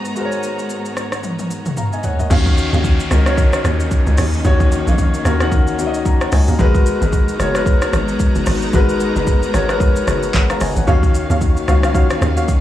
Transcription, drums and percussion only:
0.05 shaker medium
0.16 shaker medium
0.32 shaker medium
0.43 shaker medium
0.59 shaker medium
0.70 shaker medium
0.85 shaker medium
0.97 cross-stick medium
0.97 shaker medium
1.12 cross-stick medium
1.12 shaker medium
1.24 high tom soft
1.24 shaker medium
1.39 high tom soft
1.39 shaker medium
1.51 shaker medium
1.66 mid tom medium
1.66 shaker soft
1.77 mid tom medium
1.77 shaker medium
1.93 shaker soft
2.04 floor tom medium
2.04 shaker loud
2.19 floor tom medium
2.19 shaker medium
2.31 kick loud
2.31 crash loud
2.31 shaker medium
2.46 kick loud
2.46 shaker medium
2.58 shaker loud
2.73 shaker medium
2.84 kick medium
2.84 shaker medium
3.00 shaker medium
3.11 cross-stick medium
3.11 shaker loud
3.26 cross-stick loud
3.26 shaker medium
3.37 kick loud
3.37 shaker medium
3.53 cross-stick loud
3.53 shaker medium
3.65 cross-stick loud
3.65 shaker loud
3.80 shaker medium
3.91 kick loud
3.91 shaker medium
4.07 shaker medium
4.18 cross-stick medium
4.18 open hi-hat medium
4.18 shaker loud
4.34 shaker medium
4.45 kick loud
4.45 shaker medium
4.60 kick loud
4.60 shaker medium
4.72 shaker medium
4.87 shaker medium
4.98 kick medium
4.98 shaker medium
5.14 shaker medium
5.25 cross-stick medium
5.25 shaker loud
5.40 cross-stick loud
5.40 shaker medium
5.52 kick loud
5.52 shaker medium
5.67 shaker medium
5.79 shaker loud
5.94 shaker medium
6.06 kick loud
6.06 shaker medium
6.21 cross-stick loud
6.21 shaker soft
6.32 cross-stick medium
6.32 open hi-hat medium
6.32 shaker loud
6.48 shaker medium
6.59 kick loud
6.59 shaker medium
6.75 kick loud
6.75 shaker medium
6.86 shaker loud
7.02 shaker medium
7.13 kick loud
7.13 shaker medium
7.28 shaker medium
7.40 cross-stick medium
7.40 shaker loud
7.55 cross-stick loud
7.55 shaker medium
7.66 kick loud
7.66 shaker medium
7.82 cross-stick loud
7.82 shaker medium
7.93 cross-stick loud
7.93 shaker medium
8.08 shaker medium
8.20 kick loud
8.20 shaker medium
8.35 shaker soft
8.46 cross-stick medium
8.46 open hi-hat medium
8.46 shaker loud
8.62 shaker medium
8.73 kick loud
8.73 shaker medium
8.89 shaker medium
9.00 shaker loud
9.16 shaker medium
9.27 kick medium
9.27 shaker medium
9.43 shaker medium
9.54 cross-stick medium
9.54 shaker loud
9.69 cross-stick loud
9.69 shaker medium
9.80 kick loud
9.80 shaker medium
9.96 shaker medium
10.08 cross-stick loud
10.08 shaker medium
10.23 shaker medium
10.34 kick loud
10.34 clap loud
10.34 shaker medium
10.50 cross-stick loud
10.50 shaker medium
10.61 cross-stick medium
10.61 open hi-hat medium
10.61 shaker loud
10.76 shaker medium
10.88 kick loud
10.88 shaker medium
11.03 kick loud
11.03 shaker medium
11.15 shaker medium
11.30 shaker medium
11.41 kick medium
11.41 shaker medium
11.57 shaker medium
11.68 cross-stick medium
11.68 shaker loud
11.83 cross-stick loud
11.83 shaker medium
11.95 kick loud
11.95 shaker medium
12.10 cross-stick loud
12.10 shaker medium
12.22 cross-stick loud
12.22 shaker medium
12.37 shaker medium
12.48 kick loud
12.48 shaker medium

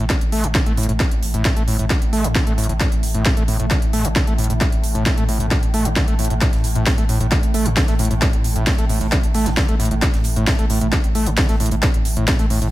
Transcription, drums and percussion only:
0.10 kick loud
0.10 snare loud
0.10 closed hi-hat medium
0.21 closed hi-hat medium
0.32 open hi-hat loud
0.44 closed hi-hat medium
0.55 kick loud
0.55 snare loud
0.55 closed hi-hat medium
0.66 closed hi-hat medium
0.77 open hi-hat loud
0.83 closed hi-hat medium
0.89 closed hi-hat medium
1.00 kick loud
1.00 snare loud
1.00 closed hi-hat medium
1.11 closed hi-hat medium
1.23 open hi-hat loud
1.34 closed hi-hat medium
1.45 kick loud
1.45 snare loud
1.45 closed hi-hat medium
1.57 closed hi-hat medium
1.68 open hi-hat loud
1.79 closed hi-hat medium
1.90 kick loud
1.90 snare loud
1.90 closed hi-hat medium
2.02 closed hi-hat medium
2.13 open hi-hat loud
2.24 closed hi-hat medium
2.35 kick loud
2.35 snare loud
2.35 closed hi-hat medium
2.47 closed hi-hat medium
2.58 open hi-hat loud
2.64 closed hi-hat medium
2.69 closed hi-hat soft
2.80 kick loud
2.80 snare loud
2.80 closed hi-hat medium
2.92 closed hi-hat medium
3.03 open hi-hat loud
3.15 closed hi-hat medium
3.26 kick loud
3.26 snare loud
3.26 closed hi-hat medium
3.37 closed hi-hat medium
3.48 open hi-hat loud
3.60 closed hi-hat medium
3.71 kick loud
3.71 snare loud
3.71 closed hi-hat medium
3.82 closed hi-hat medium
3.93 open hi-hat loud
4.05 closed hi-hat medium
4.16 kick loud
4.16 snare loud
4.16 closed hi-hat medium
4.27 closed hi-hat soft
4.38 open hi-hat loud
4.44 closed hi-hat medium
4.50 closed hi-hat soft
4.61 kick loud
4.61 snare loud
4.61 closed hi-hat medium
4.72 closed hi-hat medium
4.84 open hi-hat loud
4.95 closed hi-hat medium
5.06 kick loud
5.06 snare loud
5.06 closed hi-hat medium
5.18 closed hi-hat medium
5.29 open hi-hat loud
5.40 closed hi-hat medium
5.51 kick loud
5.51 snare loud
5.51 closed hi-hat medium
5.63 closed hi-hat medium
5.74 open hi-hat loud
5.85 closed hi-hat medium
5.96 kick loud
5.96 snare loud
5.96 closed hi-hat medium
6.08 closed hi-hat medium
6.19 open hi-hat loud
6.25 closed hi-hat medium
6.30 closed hi-hat medium
6.41 kick loud
6.41 snare loud
6.41 closed hi-hat medium
6.52 snare soft
6.52 closed hi-hat soft
6.64 closed hi-hat medium
6.64 open hi-hat loud
6.75 closed hi-hat medium
6.86 kick loud
6.86 snare loud
6.86 closed hi-hat medium
6.98 closed hi-hat medium
7.09 closed hi-hat medium
7.09 open hi-hat loud
7.21 closed hi-hat medium
7.31 kick loud
7.31 snare loud
7.31 closed hi-hat medium
7.43 closed hi-hat medium
7.54 closed hi-hat medium
7.54 open hi-hat loud
7.65 closed hi-hat soft
7.65 closed hi-hat medium
7.77 kick loud
7.77 snare loud
7.77 closed hi-hat soft
7.77 closed hi-hat medium
7.87 snare soft
7.87 closed hi-hat medium
7.99 closed hi-hat medium
7.99 open hi-hat loud
8.05 closed hi-hat medium
8.10 closed hi-hat soft
8.22 kick loud
8.22 snare loud
8.22 closed hi-hat medium
8.22 closed hi-hat loud
8.33 closed hi-hat medium
8.44 closed hi-hat medium
8.44 open hi-hat loud
8.56 closed hi-hat medium
8.66 kick loud
8.66 snare loud
8.66 closed hi-hat medium
8.78 closed hi-hat soft
8.89 open hi-hat medium
8.89 open hi-hat loud
9.01 closed hi-hat medium
9.12 kick loud
9.12 snare loud
9.12 closed hi-hat medium
9.23 closed hi-hat soft
9.34 closed hi-hat medium
9.34 open hi-hat loud
9.46 snare medium
9.46 closed hi-hat medium
9.57 kick loud
9.57 snare loud
9.57 closed hi-hat soft
9.57 closed hi-hat medium
9.69 closed hi-hat soft
9.80 snare medium
9.80 closed hi-hat medium
9.80 open hi-hat loud
9.85 closed hi-hat medium
9.91 closed hi-hat soft
10.02 kick loud
10.02 snare loud
10.02 closed hi-hat medium
10.14 snare soft
10.14 closed hi-hat medium
10.24 closed hi-hat medium
10.24 open hi-hat loud
10.36 closed hi-hat medium
10.47 kick loud
10.47 snare loud
10.47 closed hi-hat medium
10.59 closed hi-hat medium
10.70 closed hi-hat medium
10.70 open hi-hat loud
10.81 closed hi-hat medium
10.92 kick loud
10.92 snare loud
10.92 closed hi-hat medium
11.04 closed hi-hat soft
11.15 closed hi-hat medium
11.15 open hi-hat loud
11.26 closed hi-hat medium
11.26 closed hi-hat soft
11.37 kick loud
11.37 snare loud
11.37 closed hi-hat medium
11.37 closed hi-hat soft
11.49 snare soft
11.49 closed hi-hat medium
11.60 closed hi-hat medium
11.60 open hi-hat loud
11.66 closed hi-hat medium
11.71 closed hi-hat soft
11.71 closed hi-hat medium
11.83 kick loud
11.83 snare loud
11.83 closed hi-hat medium
11.83 closed hi-hat loud
11.94 closed hi-hat medium
12.05 closed hi-hat medium
12.05 open hi-hat loud
12.17 closed hi-hat medium
12.28 kick loud
12.28 snare loud
12.28 closed hi-hat medium
12.28 closed hi-hat loud
12.39 closed hi-hat medium
12.39 closed hi-hat soft
12.50 open hi-hat loud
12.50 open hi-hat medium
12.62 closed hi-hat medium

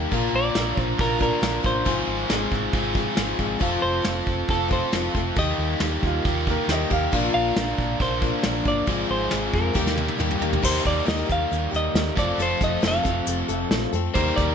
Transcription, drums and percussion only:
0.12 kick medium
0.12 open hi-hat soft
0.55 snare medium
0.55 open hi-hat soft
0.77 kick medium
0.99 kick loud
0.99 open hi-hat soft
1.21 kick medium
1.43 snare loud
1.43 open hi-hat soft
1.64 kick medium
1.86 kick loud
1.86 open hi-hat soft
2.30 snare loud
2.30 open hi-hat soft
2.52 kick medium
2.73 kick loud
2.73 open hi-hat soft
2.95 kick medium
3.17 snare loud
3.17 open hi-hat soft
3.39 kick medium
3.61 kick medium
3.61 open hi-hat soft
4.05 snare loud
4.05 open hi-hat soft
4.27 kick medium
4.48 kick medium
4.48 open hi-hat soft
4.71 kick medium
4.93 snare loud
4.93 open hi-hat soft
5.15 kick medium
5.36 kick loud
5.36 open hi-hat soft
5.80 snare loud
5.80 open hi-hat medium
6.03 kick medium
6.25 kick loud
6.25 open hi-hat soft
6.47 kick medium
6.69 snare loud
6.69 open hi-hat soft
6.91 kick medium
7.13 kick loud
7.13 open hi-hat soft
7.56 snare loud
7.56 open hi-hat soft
7.78 kick medium
8.00 kick medium
8.00 open hi-hat soft
8.22 kick medium
8.43 snare loud
8.43 open hi-hat soft
8.65 kick medium
8.87 kick medium
8.87 open hi-hat soft
9.31 snare loud
9.31 open hi-hat soft
9.54 kick medium
9.75 kick loud
9.75 snare medium
9.87 snare soft
9.97 high tom medium
10.08 high tom medium
10.20 mid tom medium
10.31 mid tom medium
10.42 floor tom medium
10.53 floor tom medium
10.64 kick medium
10.64 crash medium
10.86 kick medium
10.86 closed hi-hat medium
11.08 snare loud
11.08 closed hi-hat medium
11.30 kick medium
11.30 closed hi-hat medium
11.52 closed hi-hat medium
11.74 closed hi-hat medium
11.95 snare loud
11.95 closed hi-hat medium
12.17 kick medium
12.17 closed hi-hat medium
12.40 closed hi-hat medium
12.61 kick medium
12.61 closed hi-hat medium
12.83 snare loud
12.83 closed hi-hat medium
13.05 kick medium
13.05 closed hi-hat medium
13.27 closed hi-hat medium
13.49 closed hi-hat medium
13.71 snare loud
13.71 closed hi-hat medium
13.93 closed hi-hat medium
14.15 kick medium
14.15 closed hi-hat medium
14.38 kick medium
14.38 closed hi-hat medium

